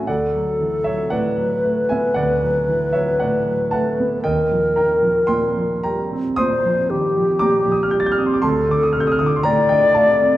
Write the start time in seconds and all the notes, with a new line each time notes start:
Already playing: A3 E5 F#5 G#5 A5 B5
0.07 D2 A4 D5 F#5
0.35 F#3
0.60 E3
0.84 F#3 C#5 E5
1.10 A2 B4 D5 F#5
1.38 F#3
1.64 A3
1.89 B3 E5 G#5
2.14 D2 D5 F#5
2.42 F#3
2.68 E3
2.93 F#3 C#5 E5
3.20 A2 D5 F#5
3.46 F#3
3.71 A3 F#5 A5
4.00 B3
4.22 D#2 A#4 D#5 G5
4.51 F3
4.76 D#3 G5 A#5
5.03 F3
5.27 A#2 G5 C6
5.56 F3
5.83 G3 G5 A#5
6.13 C4
6.36 A#2 C5 C6 D#6
6.65 F3
6.90 D#3 G4
7.17 F3
7.39 A#2 A#5 D6
7.68 F3 D#6
7.83 F6
7.91 G3 G6
8.00 A6
8.06 G6
8.12 F6
8.18 C4 D#6
8.26 C6
8.34 D6
8.42 D2 A4 A5 C6
8.69 D3 D6
8.83 D#6
8.93 C3 F6
9.00 G6
9.07 D#6
9.12 F6
9.19 D3 D#6
9.26 D6
9.36 C6
9.43 A2 D5 G5 A#5
9.69 D3 D#5 G5
9.95 A3 F5 A5
10.22 C4